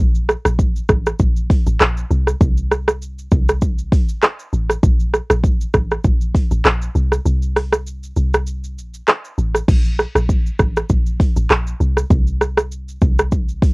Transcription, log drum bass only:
0.00 A#1
0.45 A#1
0.89 A1
1.20 A#1
1.67 A1
1.80 A#1
2.11 C2
2.41 C2
3.32 C2
3.92 A#1
4.53 A1
4.83 A#1
5.30 A#1
5.74 A1
6.05 A#1
6.52 A1
6.65 A#1
6.95 C2
7.26 C2
8.17 C2
8.77 A#1
9.38 A1
9.68 A#1
10.15 A#1
10.59 A1
10.90 A#1
11.36 A1
11.50 A#1
11.80 C2
12.11 C2
13.02 C2
13.62 A#1

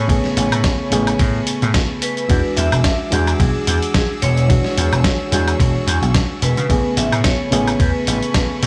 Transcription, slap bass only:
Already playing: A2
0.37 A1
0.52 A2
0.92 A1
1.20 A2
1.62 A2
2.30 E2
2.57 E2
2.72 E1
3.12 E2
3.40 B1
3.67 E2
4.22 E1
4.77 E2
4.92 E1
5.32 E2
5.60 E1
5.75 muted slap bass stroke
5.87 E2
6.02 B1
6.42 E1
6.57 C#3
6.70 A1
6.97 A1
7.12 A2
7.52 A1
7.80 E2
8.07 A1
8.62 A2

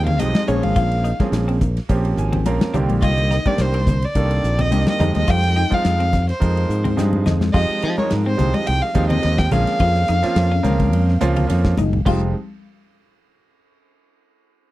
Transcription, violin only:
0.06 F5
0.19 D#5
0.48 C#5
0.63 F5
3.02 D#5
3.47 D5
3.61 C5
4.04 D5
4.61 D#5
4.89 D#5
5.17 D#5
5.30 G5
5.74 F5
6.30 C5
7.53 D#5
7.98 C#5
8.26 C5
8.54 D#5
8.67 G5
8.82 F5
9.09 D#5
9.38 G5
9.52 F5

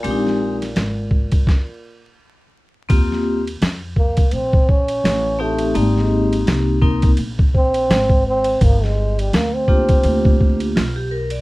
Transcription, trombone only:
Already playing: A#2
3.98 A#3
4.34 C4
4.69 C#4
5.41 A3
5.77 G3
6.01 G#3
7.55 C4
8.27 C4
8.64 A#3
8.84 G#3
9.20 G3
9.35 A#3
9.55 C4

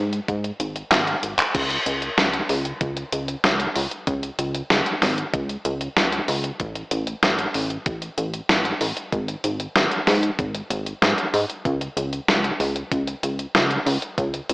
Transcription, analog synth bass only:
Already playing: G#2
0.28 G#2
0.60 G#1
0.92 G#1
1.23 G#1
1.55 C#2
1.86 C#2
2.18 C#2
2.49 C#2
2.81 C#2
3.12 C#2
3.44 C#2
3.76 C#2
4.07 C#2
4.39 C#2
4.70 C#2
5.02 G#1
5.34 C#2
5.65 C#2
5.96 C#2
6.28 C#2
6.60 A1
6.91 A1
7.23 A1
7.54 A1
7.86 A1
8.18 A1
8.49 A1
8.81 A1
9.12 G#1
9.44 G#1
9.76 G#1
10.07 G#2
10.39 G#1
10.70 G#1
11.02 G#2
11.34 G#2
11.65 C#2
11.97 C#2
12.29 C#2
12.60 C#2
12.92 C#2
13.23 C#2
13.55 C#2
13.86 C#2
14.18 C#2
14.50 C#2

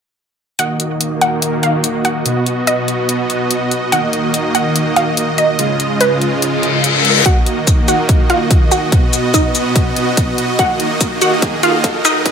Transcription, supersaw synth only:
0.59 D#3 A#3 F#4 D#5
2.26 B2 B3
3.92 D#3 A#3
5.59 C#3 G#3 F4
7.26 D#3 F#4 D#5
8.92 B2 B3
10.59 D#3 A#3
12.26 C#3 G#3 F4

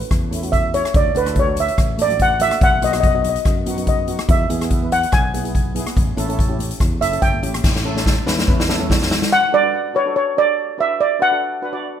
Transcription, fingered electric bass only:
0.11 E2
0.94 D2
1.15 D2
1.78 A1
2.61 B1
2.82 B1
3.45 F#2
4.29 E2
4.50 E2
5.13 B1
5.96 A1
6.17 A1
6.80 E2
7.01 F#1
7.22 G1
7.43 A1
7.64 A1
8.27 E2
8.48 E2

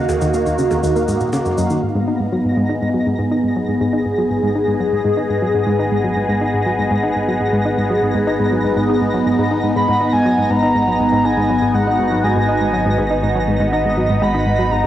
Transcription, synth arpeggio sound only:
0.09 D#2
0.21 D#2
0.34 A#3
0.46 D#2
0.59 C#3
0.71 D#2
0.83 D#2
0.96 A#3
1.08 G#2
1.21 A#2
1.33 C#3
1.45 F#2
1.58 F#2
1.70 D#3
1.83 G#2
1.95 G#2
2.08 D#4
2.20 G#2
2.32 F#3
2.45 G#2
2.57 G#2
2.69 D#4
2.82 G#2
2.94 F#3
3.06 G#2
3.19 G#2
3.31 D#4
3.44 G#2
3.56 F#3
3.68 G#2
3.81 G#2
3.93 D#4
4.05 G#2
4.18 F#3
4.30 G#2
4.43 G#2
4.55 D#4
4.68 G#2
4.80 F#3
4.92 G#2
5.05 G#2
5.17 D#4
5.30 G#2
5.42 F#3
5.54 G#2
5.67 G#2
5.79 D#4
5.92 G#2
6.04 F#3
6.16 G#2
6.29 G#2
6.41 D#4
6.54 G#2
6.66 F#3
6.79 G#2
6.91 G#2
7.03 D#4
7.16 G#2
7.28 F#3
7.40 G#2
7.53 G#2
7.65 D#4
7.78 G#2
7.90 F#3
8.02 G#2
8.15 G#2
8.27 D#4
8.40 G#2
8.52 F#3
8.64 G#2
8.77 G#2
8.89 D#4
9.01 G#2
9.14 F#3
9.26 G#2
9.39 G#2
9.51 D#4
9.64 G#2
9.76 G#2
9.88 G#2
10.01 D#4
10.13 G#2
10.25 F#3
10.38 G#2
10.50 G#2
10.63 D#4
10.75 G#2
10.88 F#3
11.00 G#2
11.12 G#2
11.25 D#4
11.37 G#2
11.50 F#3
11.62 G#2
11.75 G#2
11.87 D#4
11.99 G#2
12.12 F#3
12.24 G#2
12.36 G#2
12.49 D#4
12.61 G#2
12.73 F#3
12.86 G#2
12.98 G#2
13.11 D#4
13.23 G#2
13.36 F#3
13.48 G#2
13.60 G#2
13.73 D#4
13.85 G#2
13.97 F#3
14.10 G#2
14.22 G#2
14.34 D#4
14.47 G#2
14.59 F#3
14.72 G#2

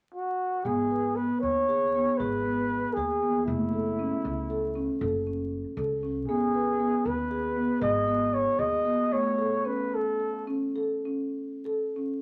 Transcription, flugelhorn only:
0.14 F#4
0.65 G#4
1.16 B4
1.41 C#5
2.17 B4
2.93 G#4
3.46 E4
6.28 G#4
7.06 B4
7.82 D#5
8.34 C#5
8.59 D#5
9.13 C#5
9.66 B4
9.94 A4

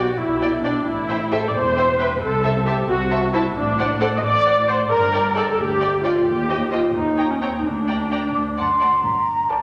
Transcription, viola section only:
Already playing: F#4
0.18 E4
0.63 D4
0.86 E4
1.32 A4
1.48 D5
1.55 C5
1.99 B4
2.21 A4
2.66 G4
2.89 F#4
3.33 E4
3.55 D4
4.01 A4
4.17 D#5
4.23 D5
4.69 C5
4.90 A#4
5.36 A4
5.51 A4
5.58 G4
6.03 F4
6.26 G4
6.72 F4
6.95 D#4
7.30 C#4
7.42 C4
7.58 D#4
7.65 D4
9.50 A#4

